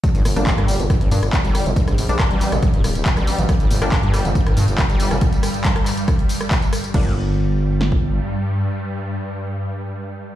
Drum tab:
CC |----------------|----------------|----------------|----------------|
HH |xxoxxxoxxxoxxxox|xxoxxxoxxxoxxxox|xxoxxxoxxxoxxxox|xxoxxxoxxxoxxxox|
TB |xxxxx-xxx-xxxxxx|xxxxx-xxx-xxxxxx|xxxxx-xxx-xxxxxx|xxxxx-xxx-xxxxxx|
CP |----x-------x---|----x-x-----x---|----x-------x---|----x-x-----x---|
SD |--r--r--r--r--r-|-r--r--r--r--r--|r--r--r--r--r--r|--r--r--r--r--r-|
BD |o---o---o---o---|o---o---o---o---|o---o---o---o---|o---o---o---o---|

CC |x---------------|----------------|
HH |----------------|----------------|
TB |----------------|----------------|
CP |----------------|----------------|
SD |--------o-------|----------------|
BD |o--------o------|----------------|